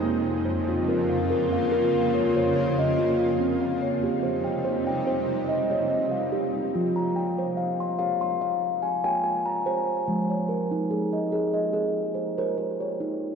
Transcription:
<<
  \new Staff \with { instrumentName = "Steel tongue drum" } { \time 4/4 \key f \minor \tempo 4 = 72 << { r8 c''8 bes'16 f''8 f''8. des''16 c''16 des''16 ees''8. | r16 f''16 des''8 c''16 g''8 g''8. ees''16 des''16 ees''16 f''8. | r16 bes''16 g''8 f''16 c'''8 c'''8. aes''16 g''16 aes''16 bes''8. | r16 des''16 bes'8 aes'16 ees''8 ees''8. c''16 bes'16 c''16 des''8. | } \\ { bes8 r16 f'8 r16 bes'8 bes'8 r16 des''8 r16 f'8 | c'8 r16 g'8 r16 c''8 c''8 r16 ees''8 r16 g'8 | f'8 r16 c''8 r16 f''8 f''8 r16 aes''8 r16 c''8 | aes8 r16 ees'8 r16 aes'8 aes'8 r16 c''8 r16 ees'8 | } >> }
  \new Staff \with { instrumentName = "Steel tongue drum" } { \clef bass \time 4/4 \key f \minor r1 | r1 | f1 | f1 | }
  \new Staff \with { instrumentName = "Ambient pad" } { \clef bass \time 4/4 \key f \minor << { <des bes f'>1 | <c g ees'>1 | r1 | r1 | } \\ { f,1~ | f,1 | r1 | r1 | } >> }
>>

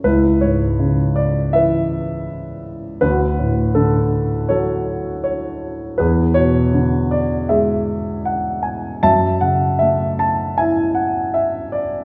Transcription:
<<
  \new Staff \with { instrumentName = "Grand piano" } { \time 4/4 \key fis \minor \tempo 4 = 80 << { b'8 cis''4 d''8 e''4. r8 | b'4 a'4 cis''4 cis''4 | b'8 cis''4 d''8 e''4 fis''8 gis''8 | a''8 fis''8 e''8 a''8 gis''8 fis''8 e''8 d''8 | } \\ { e'2 b'2 | fis'2 a'2 | gis'2 gis'2 | e''2 e''2 | } >> }
  \new Staff \with { instrumentName = "Grand piano" } { \clef bass \time 4/4 \key fis \minor cis,8 gis,8 cis4 e2 | d,8 a,8 d4 fis2 | e,8 b,8 d4 gis2 | fis,8 cis8 a4 e'2 | }
>>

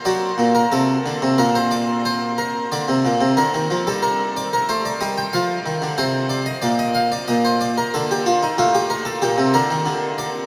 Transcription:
<<
  \new Staff \with { instrumentName = "Harpsichord" } { \time 4/4 \key bes \major \tempo 4 = 92 d''8. bes'16 a'4 bes'16 c''16 d''8 c''8 bes'8 | d''4 bes'8. a'16 bes'8 d''16 bes'16 c''16 d''16 ees''16 g''16 | f''4 c''8 d''16 ees''16 d''16 ees''16 f''16 d''16 ees''16 c''16 d''16 bes'16 | a'16 g'16 f'16 ees'16 f'16 g'16 bes'16 a'16 g'8 bes'4 d''8 | }
  \new Staff \with { instrumentName = "Harpsichord" } { \clef bass \time 4/4 \key bes \major fis8 bes,8 c8 d16 c16 bes,2 | d16 c16 bes,16 c16 d16 ees16 f16 g4~ g16 a8 g8 | f8 ees16 d16 c4 bes,4 bes,4 | d4 a,4 bes,16 c16 d16 ees16 d4 | }
>>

